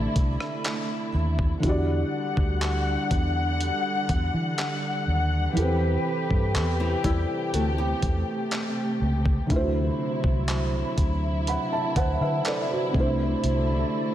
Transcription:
Already playing: felt piano C3 C4 E4 A4 D5, string section D3 A3 E4
0.16 fingered electric bass C2, kick, closed hi-hat
0.40 cross-stick
0.64 clap, closed hi-hat
1.14 fingered electric bass D#2
1.39 kick
1.60 fingered electric bass E2, felt piano D3 E4, string section D3 G3 F#5, kick, closed hi-hat
1.64 felt piano F#4 G4
1.69 felt piano D5
2.37 fingered electric bass D2, kick
2.62 clap, closed hi-hat
3.11 fingered electric bass E2, kick, closed hi-hat
3.61 closed hi-hat
4.09 fingered electric bass E2, kick, closed hi-hat
4.34 fingered electric bass E3
4.58 clap, closed hi-hat
5.08 fingered electric bass D#2
5.53 fingered electric bass E2, string section C3 G4 B4, felt piano E3 E4 G4, closed hi-hat
5.59 felt piano C4 A4 B4
6.31 fingered electric bass G2, kick
6.55 fingered electric bass E2, clap, closed hi-hat
6.80 nylon-string guitar E3 C4
7.04 fingered electric bass E2, nylon-string guitar G3 E4, kick, closed hi-hat
7.53 fingered electric bass D2, string section A3, nylon-string guitar A3 F#4, closed hi-hat
7.78 nylon-string guitar B3 G4
8.02 fingered electric bass E2, kick, closed hi-hat
8.51 clap, closed hi-hat
9.01 fingered electric bass C#2
9.26 kick
9.47 fingered electric bass D2, felt piano D3 A3, string section F#3, kick, closed hi-hat
9.51 string section E4, felt piano E4 F4
9.56 felt piano C5
9.60 felt piano F#4
10.24 fingered electric bass C2, kick
10.48 clap, closed hi-hat
10.98 fingered electric bass D2, kick, closed hi-hat
11.47 felt piano F#5 B5, closed hi-hat
11.72 felt piano E5 A5
11.96 fingered electric bass D2, felt piano C5 F#5, kick, closed hi-hat
12.21 fingered electric bass D3, felt piano B4 E5
12.45 felt piano A4 D5, clap, closed hi-hat
12.71 felt piano F#4 C5
12.91 fingered electric bass C2, felt piano C3 A3, string section D3 A3, kick
12.95 felt piano D4 E4
13.00 felt piano C5
13.44 fingered electric bass C2, closed hi-hat

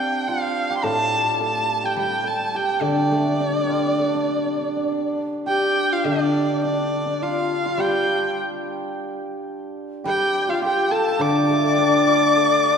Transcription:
Already playing: hammered dulcimer C4 D4 F4 G4, erhu G5
0.28 hammered dulcimer F4, erhu F5
0.70 hammered dulcimer G4
0.77 erhu C6
0.83 guzheng A2, hammered dulcimer A4, erhu A5
1.41 hammered dulcimer A4, erhu A5
1.83 hammered dulcimer G4, erhu G5
1.96 guzheng G3, hammered dulcimer G4, erhu G5
2.24 hammered dulcimer A4, erhu A5
2.55 hammered dulcimer G4, erhu G5
2.81 guzheng D3, hammered dulcimer D4, erhu D5
2.91 hammered dulcimer D4
2.98 hammered dulcimer D4
3.03 hammered dulcimer D4
3.11 guzheng A3, hammered dulcimer D4
3.20 hammered dulcimer D4
3.25 hammered dulcimer D4
3.34 hammered dulcimer D4
3.40 hammered dulcimer D4, guzheng D4
3.50 hammered dulcimer D4
3.57 hammered dulcimer D4
3.64 hammered dulcimer D4
3.69 hammered dulcimer D4, guzheng F4
3.79 hammered dulcimer D4
3.86 hammered dulcimer D4
3.92 hammered dulcimer D4
3.99 hammered dulcimer D4, guzheng A4
4.09 hammered dulcimer D4
4.15 hammered dulcimer D4
4.23 hammered dulcimer D4
4.30 hammered dulcimer D4
4.39 hammered dulcimer D4
4.46 hammered dulcimer D4
4.54 hammered dulcimer D4
4.62 hammered dulcimer D4
4.69 hammered dulcimer D4
4.76 hammered dulcimer D4
4.84 hammered dulcimer D4
4.92 hammered dulcimer D4
5.46 hammered dulcimer G4, xiao G4, erhu G5
5.92 xiao F4, erhu F5
6.05 guzheng D3, hammered dulcimer D4, xiao D4, erhu D5
6.64 hammered dulcimer D4, xiao D4, erhu D5
7.06 hammered dulcimer D4, xiao D4
7.22 xiao F4, hammered dulcimer F4, erhu F5
7.66 hammered dulcimer F4
7.78 guzheng G3, hammered dulcimer G4, xiao G4, erhu G5
10.04 guzheng G3, hammered dulcimer G4, xiao A4, erhu G5
10.10 xiao G4
10.49 xiao F4, hammered dulcimer F4, erhu F5
10.62 hammered dulcimer G4, xiao A4, erhu G5
10.68 xiao G4
10.91 hammered dulcimer A4, xiao A4, erhu A5
11.12 hammered dulcimer F5
11.19 guzheng D3, hammered dulcimer D5, xiao D5, erhu D6
11.49 guzheng A3
11.78 guzheng D4
12.07 guzheng F4
12.36 guzheng A4

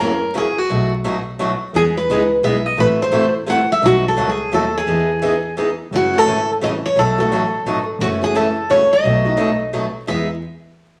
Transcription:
Already playing: double bass F#2, steel-string acoustic guitar A#4
0.00 steel-string acoustic guitar C#3 E3 A#3 C#4 F#4
0.34 steel-string acoustic guitar C#3 E3 A#3 C#4 F#4 G#4
0.58 steel-string acoustic guitar F#4
0.69 double bass B1, steel-string acoustic guitar B2 F#3 A3 D#4 F#4
1.04 steel-string acoustic guitar B2 F#3 A3 D#4 F#4
1.39 steel-string acoustic guitar B2 F#3 A3 D#4 F#4
1.73 double bass E2, steel-string acoustic guitar E3 G#3 B3 D#4 G#4
1.97 steel-string acoustic guitar B4
2.08 double bass C#2, steel-string acoustic guitar E3 G#3 B3 D#4 G#4
2.42 double bass B1, steel-string acoustic guitar E3 G#3 B3 D#4 G#4 E5
2.66 steel-string acoustic guitar D#5
2.77 double bass A1, steel-string acoustic guitar C3 E3 A3 E4 F#4 B4
3.02 steel-string acoustic guitar C5
3.11 steel-string acoustic guitar C3 E3 A3 E4 F#4
3.46 steel-string acoustic guitar C3 E3 A3 E4 F#4 F#5
3.72 steel-string acoustic guitar E5
3.82 double bass B1, steel-string acoustic guitar B2 F#3 A3 D#4 F#4
4.08 steel-string acoustic guitar A4
4.16 double bass C#2, steel-string acoustic guitar B2 F#3 A3 D#4 F#4
4.30 steel-string acoustic guitar G#4
4.52 double bass D#2, steel-string acoustic guitar B2 F#3 A3 D#4 F#4 A4
4.77 steel-string acoustic guitar G#4
4.86 double bass E2, steel-string acoustic guitar E3 B3 D#4 G#4
5.22 steel-string acoustic guitar E3 B3 D#4 G#4
5.57 steel-string acoustic guitar E3 B3 D#4 G#4
5.91 double bass F#1, steel-string acoustic guitar C#3 E3 A3 C#4 F#4
5.96 steel-string acoustic guitar F#4
6.14 steel-string acoustic guitar A3 C#4 F#4
6.18 steel-string acoustic guitar A4
6.26 double bass G#1, steel-string acoustic guitar C#3 E3 A3 C#4 F#4
6.60 double bass A1, steel-string acoustic guitar C#3 E3 A3 C#4 F#4 D#5
6.86 steel-string acoustic guitar C#5
6.96 double bass B1, steel-string acoustic guitar B2 F#3 A3 D#4 F#4 A4
7.18 steel-string acoustic guitar A3 D#4 F#4 A4
7.30 double bass A1, steel-string acoustic guitar B2 F#3 A3 D#4 F#4
7.64 double bass G#1, steel-string acoustic guitar B2 F#3 A3 D#4 F#4
7.99 double bass F#1, steel-string acoustic guitar C#3 E3 A3 C#4 F#4
8.22 steel-string acoustic guitar A3 C#4 F#4 G#4
8.35 steel-string acoustic guitar C#3 E3 A3 C#4 F#4 A4
8.70 steel-string acoustic guitar C#3 E3 A3 C#4 F#4 C#5
8.93 steel-string acoustic guitar D#5
9.03 double bass B1, steel-string acoustic guitar B2 F#3 A3 D#4 F#4
9.25 steel-string acoustic guitar A3 D#4 F#4
9.37 steel-string acoustic guitar B2 F#3 A3 D#4 F#4
9.73 steel-string acoustic guitar B2 F#3 A3 D#4 F#4
10.07 double bass E2, steel-string acoustic guitar E3 G#3 B3 D#4 G#4 E5

